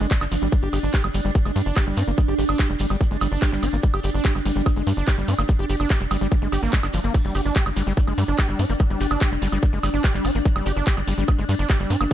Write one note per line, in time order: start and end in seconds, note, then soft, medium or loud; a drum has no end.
0.00 0.07 G1 loud
0.00 0.07 G#3 loud
0.00 7.13 D4 medium
0.00 closed hi-hat soft
0.00 shekere soft
0.11 0.15 G3 medium
0.11 kick loud
0.11 clap loud
0.11 closed hi-hat medium
0.11 shekere soft
0.21 0.27 G1 medium
0.21 0.25 D4 medium
0.21 clap soft
0.21 closed hi-hat soft
0.21 high woodblock medium
0.21 shekere soft
0.32 0.38 G1 loud
0.32 0.35 F3 loud
0.32 open hi-hat loud
0.32 ride medium
0.32 shekere medium
0.42 0.48 G#1 loud
0.42 0.48 G3 medium
0.42 closed hi-hat soft
0.42 shekere soft
0.52 0.56 G3 medium
0.52 kick loud
0.52 closed hi-hat medium
0.52 shekere medium
0.63 0.69 G1 medium
0.63 0.69 G4 loud
0.63 closed hi-hat soft
0.63 shekere soft
0.73 0.79 G1 loud
0.73 0.79 G4 medium
0.73 open hi-hat loud
0.73 ride medium
0.73 high woodblock soft
0.73 shekere loud
0.83 0.90 G1 medium
0.83 0.93 D4 medium
0.83 shekere soft
0.93 1.03 G4 medium
0.93 kick loud
0.93 clap loud
0.93 closed hi-hat medium
0.93 shekere medium
1.04 1.10 G1 medium
1.04 1.08 G3 medium
1.04 closed hi-hat soft
1.04 high woodblock medium
1.04 shekere soft
1.14 1.21 G1 loud
1.14 1.20 G3 loud
1.14 open hi-hat loud
1.14 ride medium
1.14 shekere medium
1.25 1.31 G1 loud
1.25 1.31 G3 loud
1.25 closed hi-hat soft
1.25 shekere soft
1.35 1.39 G3 medium
1.35 kick loud
1.35 closed hi-hat medium
1.35 shekere medium
1.45 1.52 G1 medium
1.45 1.52 G#3 medium
1.45 closed hi-hat soft
1.45 high woodblock soft
1.45 shekere soft
1.56 1.62 G2 loud
1.56 1.62 G3 medium
1.56 open hi-hat loud
1.56 ride medium
1.56 shekere medium
1.66 1.72 G1 medium
1.66 1.75 D4 medium
1.66 closed hi-hat soft
1.66 shekere soft
1.76 1.86 G4 medium
1.76 kick loud
1.76 clap loud
1.76 closed hi-hat medium
1.76 high woodblock medium
1.76 shekere soft
1.87 1.93 G1 medium
1.87 1.99 G3 medium
1.87 closed hi-hat soft
1.87 shekere soft
1.97 2.03 G2 loud
1.97 2.03 D4 medium
1.97 open hi-hat loud
1.97 ride medium
1.97 shekere medium
2.08 2.14 G1 medium
2.08 2.11 A#3 medium
2.08 closed hi-hat soft
2.08 shekere soft
2.18 2.22 G3 medium
2.18 kick loud
2.18 closed hi-hat medium
2.18 high woodblock soft
2.18 shekere medium
2.28 2.34 G1 medium
2.28 2.34 G4 loud
2.28 closed hi-hat soft
2.28 shekere soft
2.39 2.45 G1 loud
2.39 2.45 G4 medium
2.39 open hi-hat loud
2.39 ride medium
2.39 shekere medium
2.49 2.55 G1 medium
2.49 2.58 D4 medium
2.49 closed hi-hat soft
2.49 high woodblock medium
2.49 shekere soft
2.59 2.68 G4 medium
2.59 kick loud
2.59 clap loud
2.59 closed hi-hat medium
2.59 shekere medium
2.69 2.76 F1 medium
2.69 2.73 G3 medium
2.69 closed hi-hat soft
2.69 shekere soft
2.79 2.86 G1 loud
2.79 2.86 G3 loud
2.79 open hi-hat loud
2.79 ride medium
2.79 shekere medium
2.90 2.96 G1 medium
2.90 2.96 G3 loud
2.90 closed hi-hat soft
2.90 high woodblock soft
2.90 shekere soft
3.01 3.04 G3 medium
3.01 kick loud
3.01 closed hi-hat medium
3.01 shekere medium
3.11 3.17 G1 medium
3.11 3.17 G#3 medium
3.11 closed hi-hat soft
3.11 shekere soft
3.21 3.27 G1 loud
3.21 3.27 G3 medium
3.21 open hi-hat loud
3.21 ride medium
3.21 high woodblock medium
3.21 shekere medium
3.32 3.38 G1 medium
3.32 3.41 D4 medium
3.32 closed hi-hat soft
3.32 shekere soft
3.42 3.51 G4 medium
3.42 kick loud
3.42 clap loud
3.42 closed hi-hat medium
3.42 shekere soft
3.52 3.59 G1 medium
3.52 3.64 G3 medium
3.52 clap soft
3.52 closed hi-hat soft
3.52 shekere soft
3.63 3.69 G1 loud
3.63 3.69 D4 medium
3.63 open hi-hat loud
3.63 ride medium
3.63 high woodblock soft
3.63 shekere medium
3.73 3.79 G#1 medium
3.73 3.77 A#3 medium
3.73 closed hi-hat soft
3.73 shekere soft
3.83 3.87 G3 medium
3.83 kick loud
3.83 closed hi-hat medium
3.83 shekere soft
3.94 4.00 G1 medium
3.94 4.00 G4 loud
3.94 closed hi-hat soft
3.94 high woodblock medium
3.94 shekere soft
4.03 4.10 G1 loud
4.03 4.10 G4 medium
4.03 open hi-hat loud
4.03 ride medium
4.03 shekere medium
4.14 4.21 G1 loud
4.14 4.24 D4 medium
4.14 closed hi-hat soft
4.14 shekere soft
4.25 4.34 G4 medium
4.25 kick loud
4.25 clap loud
4.25 closed hi-hat medium
4.25 shekere soft
4.35 4.41 G1 medium
4.35 4.39 G3 medium
4.35 closed hi-hat soft
4.35 high woodblock soft
4.35 shekere soft
4.45 4.52 G1 loud
4.45 4.52 G3 loud
4.45 open hi-hat loud
4.45 ride medium
4.45 shekere medium
4.55 4.62 G1 loud
4.55 4.62 G3 loud
4.55 closed hi-hat soft
4.55 shekere soft
4.66 4.70 G3 medium
4.66 kick loud
4.66 closed hi-hat medium
4.66 high woodblock medium
4.66 shekere soft
4.76 4.83 G1 medium
4.76 4.83 G#3 medium
4.76 closed hi-hat soft
4.76 shekere soft
4.87 4.93 G2 loud
4.87 4.93 G3 medium
4.87 open hi-hat loud
4.87 ride medium
4.87 shekere medium
4.97 5.03 G1 medium
4.97 5.06 D4 medium
4.97 closed hi-hat soft
4.97 shekere soft
5.08 5.17 G4 medium
5.08 kick loud
5.08 clap loud
5.08 closed hi-hat medium
5.08 high woodblock soft
5.08 shekere soft
5.18 5.24 G1 medium
5.18 5.30 G3 medium
5.18 closed hi-hat soft
5.18 shekere soft
5.28 5.34 G2 loud
5.28 5.34 D4 medium
5.28 open hi-hat loud
5.28 ride medium
5.28 shekere loud
5.38 5.45 G1 loud
5.38 5.42 A#3 medium
5.38 high woodblock medium
5.38 shekere soft
5.48 5.53 G3 medium
5.48 kick loud
5.48 closed hi-hat medium
5.48 shekere medium
5.59 5.65 G1 medium
5.59 5.65 G4 loud
5.59 closed hi-hat soft
5.59 shekere soft
5.69 5.76 G1 loud
5.69 5.76 G4 medium
5.69 open hi-hat loud
5.69 ride medium
5.69 shekere medium
5.80 5.86 G1 medium
5.80 5.89 D4 medium
5.80 high woodblock soft
5.80 shekere soft
5.90 5.99 G4 medium
5.90 kick loud
5.90 clap loud
5.90 closed hi-hat medium
5.90 shekere medium
5.99 6.07 F1 medium
5.99 6.04 G3 medium
5.99 closed hi-hat soft
5.99 shekere soft
6.11 6.17 G1 loud
6.11 6.17 G3 loud
6.11 open hi-hat loud
6.11 ride medium
6.11 high woodblock medium
6.11 shekere medium
6.21 6.27 G1 medium
6.21 6.27 G3 loud
6.21 closed hi-hat soft
6.21 shekere soft
6.32 6.35 G3 medium
6.32 kick loud
6.32 closed hi-hat medium
6.32 shekere soft
6.42 6.48 G1 medium
6.42 6.48 G#3 medium
6.42 closed hi-hat soft
6.42 shekere soft
6.52 6.58 G1 loud
6.52 6.61 G4 medium
6.52 open hi-hat loud
6.52 ride medium
6.52 high woodblock soft
6.52 shekere medium
6.63 6.69 G#1 medium
6.63 6.72 A#3 loud
6.63 closed hi-hat soft
6.63 shekere soft
6.73 6.79 G#3 medium
6.73 kick loud
6.73 clap loud
6.73 closed hi-hat medium
6.73 shekere soft
6.83 6.90 G1 medium
6.83 6.87 D4 loud
6.83 clap soft
6.83 closed hi-hat soft
6.83 high woodblock medium
6.83 shekere soft
6.93 7.00 G1 loud
6.93 7.00 F3 medium
6.93 open hi-hat loud
6.93 ride medium
6.93 shekere loud
7.04 7.10 G1 medium
7.04 7.13 A#3 medium
7.04 closed hi-hat soft
7.04 shekere soft
7.14 7.18 G3 medium
7.14 12.13 D4 medium
7.14 kick loud
7.14 closed hi-hat medium
7.14 crash medium
7.14 shekere medium
7.25 7.31 G1 medium
7.25 7.34 G3 medium
7.25 closed hi-hat soft
7.25 shekere soft
7.35 7.41 G1 loud
7.35 7.41 G4 medium
7.35 open hi-hat loud
7.35 ride medium
7.35 high woodblock soft
7.35 shekere medium
7.45 7.52 G1 medium
7.45 7.55 D4 medium
7.45 closed hi-hat soft
7.45 shekere soft
7.56 7.65 G4 medium
7.56 kick loud
7.56 clap loud
7.56 closed hi-hat medium
7.56 shekere soft
7.66 7.72 G1 medium
7.66 7.70 G3 medium
7.66 closed hi-hat soft
7.66 high woodblock medium
7.66 shekere soft
7.76 7.83 G1 loud
7.76 7.83 G3 loud
7.76 open hi-hat loud
7.76 ride medium
7.76 shekere loud
7.87 7.93 G1 medium
7.87 7.93 G3 loud
7.87 shekere soft
7.97 8.01 G3 medium
7.97 kick loud
7.97 closed hi-hat medium
7.97 shekere medium
8.07 8.14 G1 medium
8.07 8.14 G#3 medium
8.07 closed hi-hat soft
8.07 high woodblock soft
8.07 shekere soft
8.18 8.24 G2 loud
8.18 8.24 G3 medium
8.18 open hi-hat loud
8.18 ride medium
8.18 shekere loud
8.28 8.34 G1 medium
8.28 8.37 D4 medium
8.28 closed hi-hat soft
8.28 shekere soft
8.39 8.48 G4 medium
8.39 kick loud
8.39 clap loud
8.39 closed hi-hat medium
8.39 high woodblock medium
8.39 shekere medium
8.48 8.55 G1 medium
8.48 8.61 G3 medium
8.48 closed hi-hat soft
8.48 shekere soft
8.59 8.65 G2 loud
8.59 8.65 D4 medium
8.59 open hi-hat loud
8.59 ride medium
8.59 shekere medium
8.70 8.76 G1 medium
8.70 8.73 A#3 medium
8.70 closed hi-hat soft
8.70 shekere soft
8.80 8.84 G3 medium
8.80 kick loud
8.80 closed hi-hat medium
8.80 high woodblock soft
8.80 shekere medium
8.90 8.96 G1 medium
8.90 8.99 G3 medium
8.90 closed hi-hat soft
8.90 shekere soft
9.01 9.07 G1 loud
9.01 9.07 G4 medium
9.01 open hi-hat loud
9.01 ride medium
9.01 shekere medium
9.10 9.17 G1 medium
9.10 9.20 D4 medium
9.10 closed hi-hat soft
9.10 high woodblock medium
9.10 shekere soft
9.20 9.30 G4 medium
9.20 kick loud
9.20 clap loud
9.20 closed hi-hat medium
9.20 shekere soft
9.32 9.38 F1 medium
9.32 9.35 G3 medium
9.32 closed hi-hat soft
9.32 shekere soft
9.42 9.48 G1 loud
9.42 9.48 G3 loud
9.42 open hi-hat loud
9.42 ride medium
9.42 shekere loud
9.52 9.58 G1 loud
9.52 9.58 G3 loud
9.52 closed hi-hat soft
9.52 high woodblock soft
9.52 shekere soft
9.62 9.66 G3 medium
9.62 kick loud
9.62 closed hi-hat medium
9.62 shekere soft
9.72 9.79 G1 medium
9.72 9.79 G#3 medium
9.72 closed hi-hat soft
9.72 shekere soft
9.83 9.90 G1 loud
9.83 9.89 G3 medium
9.83 open hi-hat loud
9.83 ride medium
9.83 high woodblock medium
9.83 shekere loud
9.94 10.00 G1 medium
9.94 10.03 D4 medium
9.94 closed hi-hat soft
9.94 shekere soft
10.04 10.13 G4 medium
10.04 kick loud
10.04 clap loud
10.04 closed hi-hat medium
10.04 shekere medium
10.14 10.21 G1 medium
10.14 10.26 G3 medium
10.14 clap soft
10.14 closed hi-hat soft
10.14 shekere soft
10.24 10.31 G1 medium
10.24 10.31 D4 medium
10.24 open hi-hat loud
10.24 ride medium
10.24 high woodblock soft
10.24 shekere loud
10.35 10.41 G#1 medium
10.35 10.39 A#3 medium
10.35 closed hi-hat soft
10.35 shekere soft
10.45 10.49 G3 medium
10.45 kick loud
10.45 closed hi-hat medium
10.45 shekere medium
10.56 10.62 G1 medium
10.56 10.65 G3 medium
10.56 closed hi-hat soft
10.56 high woodblock medium
10.56 shekere soft
10.66 10.72 G1 loud
10.66 10.72 G4 medium
10.66 open hi-hat loud
10.66 ride medium
10.66 shekere loud
10.76 10.83 G1 loud
10.76 10.86 D4 medium
10.76 closed hi-hat soft
10.76 shekere soft
10.86 10.96 G4 medium
10.86 kick loud
10.86 clap loud
10.86 closed hi-hat medium
10.86 shekere medium
10.97 11.03 G1 medium
10.97 11.01 G3 medium
10.97 closed hi-hat soft
10.97 high woodblock soft
10.97 shekere soft
11.07 11.14 G1 loud
11.07 11.14 G3 loud
11.07 open hi-hat loud
11.07 ride medium
11.07 shekere medium
11.18 11.24 G1 loud
11.18 11.24 G3 loud
11.18 closed hi-hat soft
11.18 shekere soft
11.28 11.32 G3 medium
11.28 kick loud
11.28 closed hi-hat medium
11.28 high woodblock medium
11.28 shekere medium
11.39 11.45 G1 medium
11.39 11.45 G#3 medium
11.39 closed hi-hat soft
11.39 shekere soft
11.49 11.55 G2 loud
11.49 11.55 G3 medium
11.49 open hi-hat loud
11.49 ride medium
11.49 shekere loud
11.59 11.65 G1 medium
11.59 11.68 D4 medium
11.59 closed hi-hat soft
11.59 shekere soft
11.70 11.79 G4 medium
11.70 kick loud
11.70 clap loud
11.70 closed hi-hat medium
11.70 high woodblock soft
11.70 shekere medium
11.79 11.86 G1 medium
11.79 11.92 G3 medium
11.79 closed hi-hat soft
11.79 shekere soft
11.90 11.96 G2 medium
11.90 11.96 D4 medium
11.90 open hi-hat loud
11.90 ride medium
11.90 shekere loud
12.01 12.07 G1 loud
12.01 12.04 A#3 medium
12.01 closed hi-hat soft
12.01 high woodblock medium
12.01 shekere soft